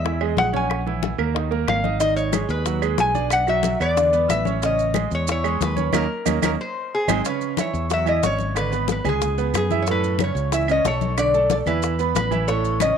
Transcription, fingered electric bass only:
0, 0, Header, 1, 2, 480
1, 0, Start_track
1, 0, Key_signature, 4, "major"
1, 0, Tempo, 327511
1, 1022, Time_signature, 4, 2, 24, 8
1, 19019, End_track
2, 0, Start_track
2, 0, Title_t, "Fingered electric bass"
2, 0, Program_c, 0, 33
2, 0, Note_on_c, 0, 40, 90
2, 484, Note_off_c, 0, 40, 0
2, 537, Note_on_c, 0, 34, 93
2, 1657, Note_off_c, 0, 34, 0
2, 1734, Note_on_c, 0, 39, 87
2, 2408, Note_off_c, 0, 39, 0
2, 2456, Note_on_c, 0, 32, 97
2, 3578, Note_off_c, 0, 32, 0
2, 3644, Note_on_c, 0, 39, 99
2, 4323, Note_off_c, 0, 39, 0
2, 4368, Note_on_c, 0, 35, 90
2, 5494, Note_off_c, 0, 35, 0
2, 5573, Note_on_c, 0, 40, 86
2, 6248, Note_off_c, 0, 40, 0
2, 6291, Note_on_c, 0, 33, 94
2, 7416, Note_off_c, 0, 33, 0
2, 7494, Note_on_c, 0, 40, 91
2, 8170, Note_off_c, 0, 40, 0
2, 8214, Note_on_c, 0, 39, 91
2, 8666, Note_off_c, 0, 39, 0
2, 8692, Note_on_c, 0, 39, 96
2, 8877, Note_off_c, 0, 39, 0
2, 9187, Note_on_c, 0, 39, 83
2, 9365, Note_off_c, 0, 39, 0
2, 9421, Note_on_c, 0, 39, 97
2, 9602, Note_off_c, 0, 39, 0
2, 10370, Note_on_c, 0, 32, 80
2, 10557, Note_off_c, 0, 32, 0
2, 11337, Note_on_c, 0, 40, 85
2, 12011, Note_off_c, 0, 40, 0
2, 12064, Note_on_c, 0, 32, 89
2, 13183, Note_off_c, 0, 32, 0
2, 13255, Note_on_c, 0, 37, 92
2, 13930, Note_off_c, 0, 37, 0
2, 13974, Note_on_c, 0, 42, 89
2, 15097, Note_off_c, 0, 42, 0
2, 15168, Note_on_c, 0, 37, 91
2, 15845, Note_off_c, 0, 37, 0
2, 15894, Note_on_c, 0, 35, 88
2, 17015, Note_off_c, 0, 35, 0
2, 17086, Note_on_c, 0, 40, 83
2, 17762, Note_off_c, 0, 40, 0
2, 17802, Note_on_c, 0, 33, 89
2, 18927, Note_off_c, 0, 33, 0
2, 19019, End_track
0, 0, End_of_file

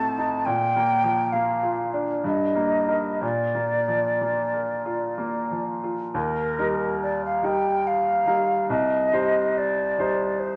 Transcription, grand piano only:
0, 0, Header, 1, 2, 480
1, 0, Start_track
1, 0, Key_signature, -3, "major"
1, 0, Tempo, 867052
1, 254, Time_signature, 3, 2, 24, 8
1, 734, Tempo, 910470
1, 1214, Tempo, 975610
1, 3134, Tempo, 849858
1, 5632, End_track
2, 0, Start_track
2, 0, Title_t, "Grand piano"
2, 0, Program_c, 0, 0
2, 0, Control_c, 0, 64, 127
2, 0, Note_on_c, 0, 45, 61
2, 0, Note_on_c, 0, 57, 46
2, 0, Note_on_c, 0, 60, 50
2, 0, Note_on_c, 0, 63, 50
2, 0, Note_on_c, 0, 66, 50
2, 99, Note_off_c, 0, 63, 0
2, 99, Note_on_c, 0, 63, 45
2, 194, Note_off_c, 0, 57, 0
2, 234, Note_off_c, 0, 45, 0
2, 256, Note_off_c, 0, 63, 0
2, 257, Note_on_c, 0, 46, 58
2, 264, Control_c, 0, 64, 0
2, 267, Note_off_c, 0, 60, 0
2, 270, Note_off_c, 0, 66, 0
2, 370, Control_c, 0, 64, 127
2, 421, Note_on_c, 0, 58, 50
2, 573, Note_on_c, 0, 53, 51
2, 673, Note_off_c, 0, 58, 0
2, 739, Note_on_c, 0, 58, 51
2, 827, Note_off_c, 0, 53, 0
2, 894, Note_on_c, 0, 65, 44
2, 988, Note_off_c, 0, 58, 0
2, 1054, Note_on_c, 0, 62, 50
2, 1150, Note_off_c, 0, 65, 0
2, 1194, Note_off_c, 0, 46, 0
2, 1215, Note_on_c, 0, 43, 58
2, 1216, Note_off_c, 0, 62, 0
2, 1224, Control_c, 0, 64, 0
2, 1304, Control_c, 0, 64, 127
2, 1370, Note_on_c, 0, 58, 43
2, 1530, Note_on_c, 0, 63, 39
2, 1534, Note_on_c, 0, 70, 45
2, 1628, Note_off_c, 0, 58, 0
2, 1678, Note_off_c, 0, 63, 0
2, 1680, Note_off_c, 0, 70, 0
2, 1681, Note_off_c, 0, 43, 0
2, 1695, Note_on_c, 0, 46, 52
2, 1707, Control_c, 0, 64, 0
2, 1792, Control_c, 0, 64, 127
2, 1859, Note_on_c, 0, 58, 40
2, 2022, Note_on_c, 0, 53, 39
2, 2118, Note_off_c, 0, 58, 0
2, 2186, Note_on_c, 0, 58, 43
2, 2276, Note_off_c, 0, 53, 0
2, 2345, Note_on_c, 0, 70, 39
2, 2436, Note_off_c, 0, 58, 0
2, 2502, Note_on_c, 0, 65, 42
2, 2596, Note_off_c, 0, 70, 0
2, 2662, Note_on_c, 0, 58, 46
2, 2757, Note_off_c, 0, 65, 0
2, 2824, Note_on_c, 0, 53, 39
2, 2921, Note_off_c, 0, 58, 0
2, 2985, Note_on_c, 0, 65, 40
2, 3078, Note_off_c, 0, 53, 0
2, 3115, Note_off_c, 0, 46, 0
2, 3136, Note_off_c, 0, 65, 0
2, 3137, Note_on_c, 0, 39, 58
2, 3147, Control_c, 0, 64, 0
2, 3244, Control_c, 0, 64, 127
2, 3375, Note_off_c, 0, 39, 0
2, 3386, Note_on_c, 0, 55, 45
2, 3389, Note_on_c, 0, 63, 43
2, 3389, Note_on_c, 0, 70, 52
2, 3836, Note_off_c, 0, 55, 0
2, 3838, Note_off_c, 0, 63, 0
2, 3838, Note_off_c, 0, 70, 0
2, 3861, Note_on_c, 0, 55, 45
2, 3866, Note_on_c, 0, 63, 46
2, 3869, Note_on_c, 0, 70, 49
2, 4307, Note_off_c, 0, 55, 0
2, 4309, Note_off_c, 0, 63, 0
2, 4311, Note_off_c, 0, 70, 0
2, 4333, Note_on_c, 0, 55, 38
2, 4336, Note_on_c, 0, 63, 38
2, 4340, Note_on_c, 0, 70, 47
2, 4551, Note_off_c, 0, 55, 0
2, 4553, Note_off_c, 0, 63, 0
2, 4555, Note_off_c, 0, 70, 0
2, 4578, Note_on_c, 0, 36, 61
2, 4581, Control_c, 0, 64, 0
2, 4672, Control_c, 0, 64, 127
2, 4815, Note_off_c, 0, 36, 0
2, 4819, Note_on_c, 0, 55, 46
2, 4822, Note_on_c, 0, 63, 43
2, 4824, Note_on_c, 0, 72, 50
2, 5280, Note_off_c, 0, 55, 0
2, 5281, Note_off_c, 0, 63, 0
2, 5282, Note_off_c, 0, 72, 0
2, 5305, Note_on_c, 0, 55, 42
2, 5310, Note_on_c, 0, 63, 43
2, 5310, Note_on_c, 0, 72, 49
2, 5632, Note_off_c, 0, 55, 0
2, 5632, Note_off_c, 0, 63, 0
2, 5632, Note_off_c, 0, 72, 0
2, 5632, End_track
0, 0, End_of_file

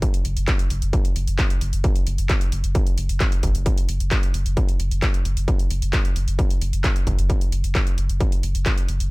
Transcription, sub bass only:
0, 0, Header, 1, 2, 480
1, 0, Start_track
1, 0, Tempo, 454545
1, 984, Time_signature, 4, 2, 24, 8
1, 9616, End_track
2, 0, Start_track
2, 0, Title_t, "Sub bass"
2, 0, Program_c, 0, 38
2, 266, Note_on_c, 0, 30, 98
2, 383, Note_off_c, 0, 30, 0
2, 389, Note_on_c, 0, 30, 81
2, 503, Note_off_c, 0, 30, 0
2, 745, Note_on_c, 0, 30, 99
2, 863, Note_off_c, 0, 30, 0
2, 869, Note_on_c, 0, 30, 85
2, 983, Note_off_c, 0, 30, 0
2, 1224, Note_on_c, 0, 30, 100
2, 1343, Note_off_c, 0, 30, 0
2, 1349, Note_on_c, 0, 30, 80
2, 1463, Note_off_c, 0, 30, 0
2, 1704, Note_on_c, 0, 30, 103
2, 1822, Note_off_c, 0, 30, 0
2, 1829, Note_on_c, 0, 30, 82
2, 1942, Note_off_c, 0, 30, 0
2, 2184, Note_on_c, 0, 30, 98
2, 2303, Note_off_c, 0, 30, 0
2, 2309, Note_on_c, 0, 30, 84
2, 2423, Note_off_c, 0, 30, 0
2, 2664, Note_on_c, 0, 30, 103
2, 2782, Note_off_c, 0, 30, 0
2, 2788, Note_on_c, 0, 30, 88
2, 2902, Note_off_c, 0, 30, 0
2, 3145, Note_on_c, 0, 30, 98
2, 3261, Note_off_c, 0, 30, 0
2, 3268, Note_on_c, 0, 30, 79
2, 3382, Note_off_c, 0, 30, 0
2, 3625, Note_on_c, 0, 30, 102
2, 3742, Note_off_c, 0, 30, 0
2, 3748, Note_on_c, 0, 30, 87
2, 3862, Note_off_c, 0, 30, 0
2, 4104, Note_on_c, 0, 30, 101
2, 4221, Note_off_c, 0, 30, 0
2, 4227, Note_on_c, 0, 30, 81
2, 4342, Note_off_c, 0, 30, 0
2, 4585, Note_on_c, 0, 30, 99
2, 4703, Note_off_c, 0, 30, 0
2, 4709, Note_on_c, 0, 30, 89
2, 4823, Note_off_c, 0, 30, 0
2, 5063, Note_on_c, 0, 30, 98
2, 5181, Note_off_c, 0, 30, 0
2, 5187, Note_on_c, 0, 30, 82
2, 5302, Note_off_c, 0, 30, 0
2, 5545, Note_on_c, 0, 30, 106
2, 5661, Note_off_c, 0, 30, 0
2, 5667, Note_on_c, 0, 30, 78
2, 5782, Note_off_c, 0, 30, 0
2, 6025, Note_on_c, 0, 30, 107
2, 6141, Note_off_c, 0, 30, 0
2, 6147, Note_on_c, 0, 30, 82
2, 6262, Note_off_c, 0, 30, 0
2, 6504, Note_on_c, 0, 30, 98
2, 6621, Note_off_c, 0, 30, 0
2, 6628, Note_on_c, 0, 30, 84
2, 6742, Note_off_c, 0, 30, 0
2, 6984, Note_on_c, 0, 30, 100
2, 7101, Note_off_c, 0, 30, 0
2, 7108, Note_on_c, 0, 30, 84
2, 7222, Note_off_c, 0, 30, 0
2, 7465, Note_on_c, 0, 30, 98
2, 7581, Note_off_c, 0, 30, 0
2, 7587, Note_on_c, 0, 30, 83
2, 7702, Note_off_c, 0, 30, 0
2, 7942, Note_on_c, 0, 30, 102
2, 8060, Note_off_c, 0, 30, 0
2, 8066, Note_on_c, 0, 30, 83
2, 8181, Note_off_c, 0, 30, 0
2, 8423, Note_on_c, 0, 30, 99
2, 8540, Note_off_c, 0, 30, 0
2, 8546, Note_on_c, 0, 30, 83
2, 8661, Note_off_c, 0, 30, 0
2, 8904, Note_on_c, 0, 30, 104
2, 9022, Note_off_c, 0, 30, 0
2, 9028, Note_on_c, 0, 30, 87
2, 9142, Note_off_c, 0, 30, 0
2, 9385, Note_on_c, 0, 30, 105
2, 9502, Note_off_c, 0, 30, 0
2, 9508, Note_on_c, 0, 30, 82
2, 9616, Note_off_c, 0, 30, 0
2, 9616, End_track
0, 0, End_of_file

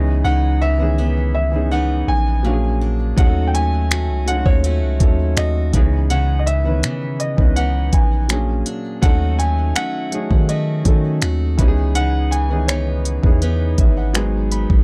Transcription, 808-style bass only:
0, 0, Header, 1, 2, 480
1, 0, Start_track
1, 0, Key_signature, 4, "minor"
1, 0, Tempo, 731707
1, 162, Time_signature, 4, 2, 24, 8
1, 9732, End_track
2, 0, Start_track
2, 0, Title_t, "808-style bass"
2, 0, Program_c, 0, 38
2, 0, Note_on_c, 0, 37, 106
2, 152, Note_off_c, 0, 37, 0
2, 161, Note_on_c, 0, 37, 108
2, 1335, Note_off_c, 0, 37, 0
2, 1363, Note_on_c, 0, 34, 98
2, 2056, Note_off_c, 0, 34, 0
2, 2084, Note_on_c, 0, 39, 106
2, 2682, Note_on_c, 0, 37, 96
2, 2692, Note_off_c, 0, 39, 0
2, 2910, Note_off_c, 0, 37, 0
2, 2923, Note_on_c, 0, 39, 107
2, 3163, Note_on_c, 0, 37, 92
2, 3173, Note_off_c, 0, 39, 0
2, 3277, Note_off_c, 0, 37, 0
2, 3283, Note_on_c, 0, 39, 101
2, 3513, Note_off_c, 0, 39, 0
2, 3521, Note_on_c, 0, 39, 96
2, 3752, Note_off_c, 0, 39, 0
2, 3764, Note_on_c, 0, 37, 111
2, 4481, Note_on_c, 0, 49, 93
2, 4491, Note_off_c, 0, 37, 0
2, 4824, Note_off_c, 0, 49, 0
2, 4842, Note_on_c, 0, 37, 91
2, 5187, Note_off_c, 0, 37, 0
2, 5202, Note_on_c, 0, 34, 97
2, 5663, Note_off_c, 0, 34, 0
2, 5922, Note_on_c, 0, 39, 112
2, 6383, Note_off_c, 0, 39, 0
2, 6761, Note_on_c, 0, 51, 93
2, 7107, Note_off_c, 0, 51, 0
2, 7120, Note_on_c, 0, 51, 100
2, 7351, Note_off_c, 0, 51, 0
2, 7361, Note_on_c, 0, 39, 98
2, 7592, Note_off_c, 0, 39, 0
2, 7601, Note_on_c, 0, 37, 105
2, 8655, Note_off_c, 0, 37, 0
2, 8681, Note_on_c, 0, 40, 99
2, 9027, Note_off_c, 0, 40, 0
2, 9042, Note_on_c, 0, 32, 104
2, 9618, Note_off_c, 0, 32, 0
2, 9643, Note_on_c, 0, 32, 100
2, 9732, Note_off_c, 0, 32, 0
2, 9732, End_track
0, 0, End_of_file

